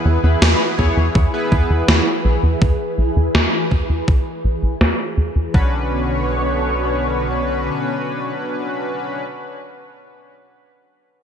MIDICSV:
0, 0, Header, 1, 5, 480
1, 0, Start_track
1, 0, Tempo, 731707
1, 1715, Time_signature, 4, 2, 24, 8
1, 7367, End_track
2, 0, Start_track
2, 0, Title_t, "Analog polysynth"
2, 0, Program_c, 0, 90
2, 0, Note_on_c, 0, 59, 88
2, 0, Note_on_c, 0, 64, 82
2, 0, Note_on_c, 0, 68, 82
2, 0, Note_on_c, 0, 71, 97
2, 127, Note_off_c, 0, 59, 0
2, 127, Note_off_c, 0, 64, 0
2, 127, Note_off_c, 0, 68, 0
2, 127, Note_off_c, 0, 71, 0
2, 156, Note_on_c, 0, 59, 73
2, 156, Note_on_c, 0, 64, 68
2, 156, Note_on_c, 0, 68, 68
2, 156, Note_on_c, 0, 71, 80
2, 487, Note_off_c, 0, 59, 0
2, 487, Note_off_c, 0, 64, 0
2, 487, Note_off_c, 0, 68, 0
2, 487, Note_off_c, 0, 71, 0
2, 516, Note_on_c, 0, 59, 82
2, 516, Note_on_c, 0, 64, 76
2, 516, Note_on_c, 0, 68, 72
2, 516, Note_on_c, 0, 73, 89
2, 700, Note_off_c, 0, 59, 0
2, 700, Note_off_c, 0, 64, 0
2, 700, Note_off_c, 0, 68, 0
2, 700, Note_off_c, 0, 73, 0
2, 876, Note_on_c, 0, 59, 84
2, 876, Note_on_c, 0, 64, 77
2, 877, Note_on_c, 0, 68, 75
2, 877, Note_on_c, 0, 71, 91
2, 1207, Note_off_c, 0, 59, 0
2, 1207, Note_off_c, 0, 64, 0
2, 1207, Note_off_c, 0, 68, 0
2, 1207, Note_off_c, 0, 71, 0
2, 1236, Note_on_c, 0, 59, 86
2, 1236, Note_on_c, 0, 64, 80
2, 1236, Note_on_c, 0, 68, 80
2, 1236, Note_on_c, 0, 73, 94
2, 1351, Note_off_c, 0, 59, 0
2, 1351, Note_off_c, 0, 64, 0
2, 1351, Note_off_c, 0, 68, 0
2, 1351, Note_off_c, 0, 73, 0
2, 3635, Note_on_c, 0, 61, 82
2, 3635, Note_on_c, 0, 62, 74
2, 3635, Note_on_c, 0, 66, 75
2, 3635, Note_on_c, 0, 71, 89
2, 6054, Note_off_c, 0, 61, 0
2, 6054, Note_off_c, 0, 62, 0
2, 6054, Note_off_c, 0, 66, 0
2, 6054, Note_off_c, 0, 71, 0
2, 7367, End_track
3, 0, Start_track
3, 0, Title_t, "Analog synth pad"
3, 0, Program_c, 1, 89
3, 0, Note_on_c, 1, 52, 80
3, 0, Note_on_c, 1, 64, 75
3, 0, Note_on_c, 1, 68, 76
3, 0, Note_on_c, 1, 71, 90
3, 3608, Note_off_c, 1, 52, 0
3, 3609, Note_off_c, 1, 64, 0
3, 3609, Note_off_c, 1, 68, 0
3, 3609, Note_off_c, 1, 71, 0
3, 3636, Note_on_c, 1, 73, 85
3, 3637, Note_on_c, 1, 47, 77
3, 3637, Note_on_c, 1, 59, 69
3, 3638, Note_on_c, 1, 50, 72
3, 6054, Note_off_c, 1, 73, 0
3, 6055, Note_off_c, 1, 47, 0
3, 6055, Note_off_c, 1, 50, 0
3, 6055, Note_off_c, 1, 59, 0
3, 7367, End_track
4, 0, Start_track
4, 0, Title_t, "Analog synth bass"
4, 0, Program_c, 2, 38
4, 35, Note_on_c, 2, 40, 90
4, 120, Note_off_c, 2, 40, 0
4, 156, Note_on_c, 2, 40, 81
4, 240, Note_off_c, 2, 40, 0
4, 275, Note_on_c, 2, 40, 102
4, 359, Note_off_c, 2, 40, 0
4, 516, Note_on_c, 2, 40, 92
4, 600, Note_off_c, 2, 40, 0
4, 636, Note_on_c, 2, 40, 79
4, 720, Note_off_c, 2, 40, 0
4, 756, Note_on_c, 2, 40, 100
4, 840, Note_off_c, 2, 40, 0
4, 997, Note_on_c, 2, 40, 94
4, 1080, Note_off_c, 2, 40, 0
4, 1117, Note_on_c, 2, 40, 78
4, 1200, Note_off_c, 2, 40, 0
4, 1235, Note_on_c, 2, 40, 102
4, 1320, Note_off_c, 2, 40, 0
4, 1476, Note_on_c, 2, 35, 87
4, 1560, Note_off_c, 2, 35, 0
4, 1596, Note_on_c, 2, 40, 79
4, 1680, Note_off_c, 2, 40, 0
4, 1717, Note_on_c, 2, 40, 98
4, 1800, Note_off_c, 2, 40, 0
4, 1956, Note_on_c, 2, 35, 87
4, 2040, Note_off_c, 2, 35, 0
4, 2076, Note_on_c, 2, 40, 80
4, 2160, Note_off_c, 2, 40, 0
4, 2196, Note_on_c, 2, 40, 97
4, 2280, Note_off_c, 2, 40, 0
4, 2437, Note_on_c, 2, 40, 90
4, 2521, Note_off_c, 2, 40, 0
4, 2556, Note_on_c, 2, 40, 76
4, 2640, Note_off_c, 2, 40, 0
4, 2677, Note_on_c, 2, 35, 100
4, 2760, Note_off_c, 2, 35, 0
4, 2916, Note_on_c, 2, 35, 92
4, 3000, Note_off_c, 2, 35, 0
4, 3036, Note_on_c, 2, 35, 79
4, 3120, Note_off_c, 2, 35, 0
4, 3155, Note_on_c, 2, 40, 100
4, 3239, Note_off_c, 2, 40, 0
4, 3395, Note_on_c, 2, 40, 85
4, 3479, Note_off_c, 2, 40, 0
4, 3515, Note_on_c, 2, 40, 77
4, 3599, Note_off_c, 2, 40, 0
4, 3636, Note_on_c, 2, 35, 93
4, 5049, Note_off_c, 2, 35, 0
4, 7367, End_track
5, 0, Start_track
5, 0, Title_t, "Drums"
5, 276, Note_on_c, 9, 38, 117
5, 342, Note_off_c, 9, 38, 0
5, 516, Note_on_c, 9, 36, 56
5, 582, Note_off_c, 9, 36, 0
5, 756, Note_on_c, 9, 36, 117
5, 822, Note_off_c, 9, 36, 0
5, 997, Note_on_c, 9, 36, 99
5, 1062, Note_off_c, 9, 36, 0
5, 1236, Note_on_c, 9, 38, 113
5, 1302, Note_off_c, 9, 38, 0
5, 1716, Note_on_c, 9, 36, 116
5, 1782, Note_off_c, 9, 36, 0
5, 2196, Note_on_c, 9, 38, 118
5, 2262, Note_off_c, 9, 38, 0
5, 2437, Note_on_c, 9, 36, 59
5, 2502, Note_off_c, 9, 36, 0
5, 2676, Note_on_c, 9, 36, 113
5, 2742, Note_off_c, 9, 36, 0
5, 3156, Note_on_c, 9, 38, 112
5, 3221, Note_off_c, 9, 38, 0
5, 3636, Note_on_c, 9, 36, 102
5, 3702, Note_off_c, 9, 36, 0
5, 7367, End_track
0, 0, End_of_file